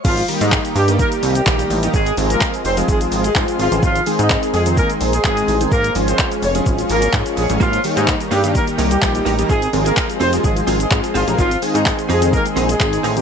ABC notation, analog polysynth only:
X:1
M:4/4
L:1/16
Q:1/4=127
K:Ab
V:1 name="Analog polysynth"
z2 [E,G,B,EG]4 z [E,G,B,EG]4 z [E,G,B,EG]2 z [E,G,B,EG] | z2 [F,A,CFA]4 z [F,A,CFA]4 z [F,A,CFA]2 z [F,A,CFA] | z2 [E,A,CEA]4 z [E,A,CEA]4 z [E,A,CEA]2 z [E,A,CEA] | z2 [F,A,DFA]4 z [F,A,DFA]4 z [F,A,DFA]2 z [F,A,DFA] |
z2 [E,G,B,EG]4 z [E,G,B,EG]4 z [E,G,B,EG]2 z [E,G,B,EG] | z2 [F,A,CFA]4 z [F,A,CFA]4 z [F,A,CFA]2 z [F,A,CFB] | z2 [E,A,CEA]4 z [E,A,CEA]4 z [E,A,CEA]2 z [E,A,CEG] |]